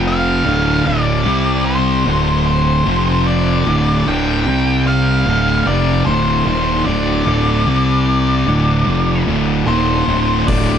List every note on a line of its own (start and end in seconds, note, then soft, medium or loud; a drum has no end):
0.00 0.42 F1 medium
0.00 0.45 F2 medium
0.00 0.46 C3 loud
0.00 0.46 F3 loud
0.00 0.46 F4 medium
0.00 0.46 C5 medium
0.00 0.46 G5 medium
0.07 0.90 F5 medium
0.45 0.84 D1 loud
0.45 0.85 D2 medium
0.45 0.86 A2 loud
0.45 0.86 D3 medium
0.45 1.25 D4 medium
0.45 1.25 A4 medium
0.45 2.84 D5 medium
0.86 1.24 D1 medium
0.86 1.25 D2 medium
0.86 1.26 A2 loud
0.86 1.26 D3 loud
0.86 1.65 D5 loud
1.25 2.03 C2 medium
1.25 2.06 C3 loud
1.25 2.06 G3 loud
1.25 2.05 C4 medium
1.25 2.06 C4 loud
1.25 2.06 G4 medium
1.66 2.46 C5 medium
2.06 2.83 D1 medium
2.06 2.86 D2 medium
2.06 2.86 A2 loud
2.06 2.86 D3 loud
2.06 2.86 D4 medium
2.06 2.86 A4 medium
2.47 3.27 C5 medium
2.86 3.63 F1 medium
2.86 3.66 F2 medium
2.86 3.66 C3 medium
2.86 3.67 F3 loud
2.86 3.67 F4 medium
2.86 3.66 C5 medium
2.86 3.67 G5 medium
3.27 4.10 D5 medium
3.67 4.04 D1 loud
3.67 4.06 D2 medium
3.67 4.06 A2 loud
3.67 4.07 D3 loud
3.67 4.46 D4 medium
3.67 4.47 A4 medium
3.67 10.78 D5 medium
4.07 4.44 D1 medium
4.07 4.46 D2 loud
4.07 4.47 A2 loud
4.07 4.47 D3 loud
4.07 4.87 G5 loud
4.47 5.23 C2 medium
4.47 5.27 C3 loud
4.47 5.27 G3 loud
4.47 5.26 C4 medium
4.47 5.27 C4 loud
4.47 5.27 G4 medium
4.87 5.70 F5 medium
5.26 5.64 D1 loud
5.26 5.66 D2 medium
5.26 5.67 A2 loud
5.26 5.67 D3 loud
5.26 7.65 D4 medium
5.26 7.65 A4 medium
5.66 6.04 F1 medium
5.66 6.06 F2 medium
5.66 6.07 C3 loud
5.66 6.07 F3 loud
5.66 6.04 D5 medium
6.06 6.44 D1 medium
6.06 6.46 D2 loud
6.06 6.46 A2 loud
6.06 6.47 D3 loud
6.06 6.45 C5 medium
6.46 6.84 D#1 loud
6.46 6.86 D#2 medium
6.46 6.86 A#2 medium
6.46 6.87 D#3 medium
6.46 6.84 C5 medium
6.85 7.24 D1 loud
6.85 7.26 D2 medium
6.85 7.26 A2 medium
6.85 7.27 D3 loud
6.85 9.22 D5 medium
7.26 7.64 D1 medium
7.26 7.66 D2 medium
7.26 7.66 A2 loud
7.26 7.66 D3 loud
7.67 8.43 C2 loud
7.67 8.46 C3 loud
7.67 8.47 G3 loud
7.67 8.47 C4 loud
7.67 8.47 C4 medium
7.67 8.47 G4 medium
8.47 8.85 D1 loud
8.47 8.87 D2 loud
8.47 8.87 A2 loud
8.47 8.87 D3 loud
8.47 10.78 D4 medium
8.47 10.78 A4 medium
8.87 9.25 F1 medium
8.87 9.26 F2 medium
8.87 9.27 C3 loud
8.87 9.27 F3 medium
9.27 9.64 D1 medium
9.27 9.67 D2 medium
9.27 9.67 A2 loud
9.27 9.67 D3 loud
9.67 10.05 D#1 medium
9.67 10.07 D#2 medium
9.67 10.07 A#2 medium
9.67 10.07 D#3 medium
9.67 10.47 C5 medium
10.07 10.45 D1 medium
10.07 10.46 D2 medium
10.07 10.47 A2 loud
10.07 10.47 D3 loud
10.47 10.78 D1 medium
10.47 10.78 D2 loud
10.47 10.78 A2 medium
10.47 10.78 D3 loud
10.47 10.78 D5 medium
10.47 kick loud
10.47 open hi-hat medium